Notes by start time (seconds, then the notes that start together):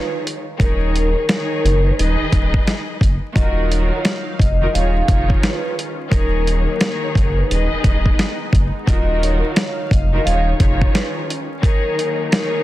Already playing: D#3 D#4 F4 G#4 B4 C#5
0.27 closed hi-hat
0.59 D#1 D#3 D#4 G#4 A#4 C#5, kick, closed hi-hat
0.96 closed hi-hat
1.28 D#3 D#4 G#4 A#4 C#5, snare, closed hi-hat
1.64 F#1, closed hi-hat
1.86 B4
1.99 D#1 D#3 D#4 G#4 B4 D#5, closed hi-hat
2.20 D#1
2.32 D#1, kick, closed hi-hat
2.54 kick
2.67 snare, closed hi-hat
3.01 F#1, kick, closed hi-hat
3.35 D#1 D#3 F#3 D#4 F4 F#4 A#4 D#5 F5, kick, closed hi-hat
3.71 C#5, closed hi-hat
4.05 snare, closed hi-hat
4.39 F1 D#5, kick, closed hi-hat
4.61 D#3 D#4 F4 F#4 A#4
4.73 D#1 D#3 C#4 D#4 F4 G#4 C#5 F5, closed hi-hat
5.07 F1 D#3 D#4 F4 G#4 C#5, kick, closed hi-hat
5.30 C#5, kick
5.42 B4, snare, closed hi-hat
5.79 closed hi-hat
6.10 D#1 D#3 F#3 A#3 D#4 G#4 A#4 C#5, kick, closed hi-hat
6.47 closed hi-hat
6.79 D#3 D#4 G#4 A#4 C#5, snare, closed hi-hat
7.15 F#1, kick, closed hi-hat
7.37 B4
7.50 D#1 D#3 G#3 B3 D#4 G#4 B4 D#5, closed hi-hat
7.72 D#1
7.84 D#1, kick, closed hi-hat
8.06 kick
8.19 snare, closed hi-hat
8.53 F#1, kick, closed hi-hat
8.87 D#1 D#3 F#3 D#4 F4 F#4 A#4 D#5 F5, kick, closed hi-hat
9.22 C#5, closed hi-hat
9.56 snare, closed hi-hat
9.91 F1 D#5, kick, closed hi-hat
10.13 D#3 D#4 F4 F#4 A#4
10.24 D#1 D#3 C#4 D#4 F4 G#4 C#5 F5, closed hi-hat
10.59 F1 D#3 D#4 F4 G#4 C#5, kick, closed hi-hat
10.81 C#5, kick
10.94 B4, snare, closed hi-hat
11.30 closed hi-hat
11.62 D#3 F#3 A#3 D#4 G#4 A#4 C#5, kick, closed hi-hat
11.99 closed hi-hat
12.31 D#3 D#4 G#4 A#4 C#5, snare, closed hi-hat